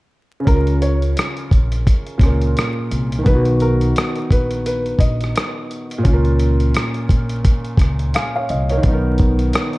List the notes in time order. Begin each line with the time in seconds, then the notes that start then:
0.40 C#3
0.45 C#2 C#4 A#4, kick, closed hi-hat
0.50 F4
0.55 A#4
0.67 closed hi-hat
0.82 C#5, closed hi-hat
1.02 closed hi-hat
1.17 cross-stick, closed hi-hat
1.37 closed hi-hat
1.51 A#1, kick, closed hi-hat
1.72 closed hi-hat
1.87 kick, closed hi-hat
2.06 closed hi-hat
2.18 C#2 A#2 C#4, kick, closed hi-hat
2.23 F4 A#4, cross-stick
2.42 closed hi-hat
2.57 cross-stick, closed hi-hat
2.91 C2, closed hi-hat
3.12 closed hi-hat
3.19 D#3
3.24 B1 B3 B4, kick, closed hi-hat
3.29 D#4
3.34 F#4
3.45 closed hi-hat
3.60 A#4, closed hi-hat
3.81 closed hi-hat
3.96 cross-stick, closed hi-hat
4.16 closed hi-hat
4.31 A#1 B4, kick, closed hi-hat
4.51 closed hi-hat
4.66 B4, closed hi-hat
4.86 closed hi-hat
4.99 A#1 D#5, kick, closed hi-hat
5.21 cross-stick, closed hi-hat
5.36 cross-stick, closed hi-hat
5.71 closed hi-hat
5.91 closed hi-hat
5.98 A#2
6.03 C#2 C#4, kick, closed hi-hat
6.08 F4
6.13 A#4
6.25 closed hi-hat
6.40 closed hi-hat
6.60 closed hi-hat
6.74 cross-stick, closed hi-hat
6.94 closed hi-hat
7.09 A#1, kick, closed hi-hat
7.29 closed hi-hat
7.45 kick, closed hi-hat
7.64 closed hi-hat
7.77 C#2, kick, closed hi-hat
7.82 cross-stick
7.99 closed hi-hat
8.14 F5 G#5, cross-stick, closed hi-hat
8.36 C#5 F5
8.49 C2 D#5, closed hi-hat
8.69 A#4 C#5, closed hi-hat
8.77 D#3
8.83 B1 B3, kick, closed hi-hat
8.88 D#4
8.93 A#4
9.18 kick, closed hi-hat
9.39 closed hi-hat
9.53 cross-stick, closed hi-hat
9.73 closed hi-hat